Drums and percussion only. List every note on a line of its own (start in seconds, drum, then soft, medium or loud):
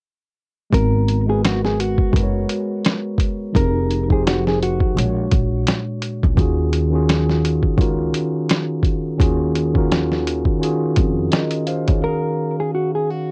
0.73 kick loud
0.73 closed hi-hat medium
1.08 closed hi-hat medium
1.45 snare loud
1.45 closed hi-hat medium
1.65 snare soft
1.80 closed hi-hat medium
1.98 kick medium
2.13 kick medium
2.13 closed hi-hat medium
2.49 closed hi-hat medium
2.85 snare loud
2.85 closed hi-hat medium
3.18 kick medium
3.18 closed hi-hat medium
3.55 kick loud
3.55 closed hi-hat medium
3.91 closed hi-hat soft
4.10 kick medium
4.27 snare loud
4.27 closed hi-hat medium
4.47 snare soft
4.63 closed hi-hat medium
4.80 kick medium
4.99 closed hi-hat medium
5.32 kick medium
5.32 closed hi-hat medium
5.67 snare loud
5.67 closed hi-hat medium
6.02 closed hi-hat medium
6.23 kick medium
6.37 kick loud
6.37 closed hi-hat medium
6.73 closed hi-hat medium
7.09 snare loud
7.09 closed hi-hat medium
7.30 snare soft
7.45 closed hi-hat medium
7.63 kick medium
7.78 kick loud
7.78 closed hi-hat medium
8.14 closed hi-hat medium
8.49 snare loud
8.49 closed hi-hat medium
8.83 kick medium
8.83 closed hi-hat medium
9.20 kick loud
9.20 closed hi-hat medium
9.55 closed hi-hat medium
9.75 kick medium
9.92 snare loud
9.92 closed hi-hat medium
10.12 snare soft
10.27 closed hi-hat medium
10.45 kick medium
10.63 closed hi-hat medium
10.96 kick medium
10.96 closed hi-hat medium
11.32 snare loud
11.32 closed hi-hat medium
11.51 closed hi-hat soft
11.67 closed hi-hat medium
11.88 kick medium
11.88 closed hi-hat soft